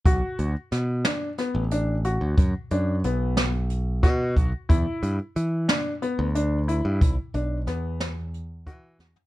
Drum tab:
HH |x-x-x-x-x-x-x-|x-x-x-x-x-x-x-|x-x-x-x-x-x-x-|x-x-x-x-x-x---|
SD |----o-o-o-----|------o---o---|------o-------|----o-o-----o-|
FT |--------------|--------------|--------------|-------------o|
BD |o-------------|o---------o-o-|o-------------|o---------o---|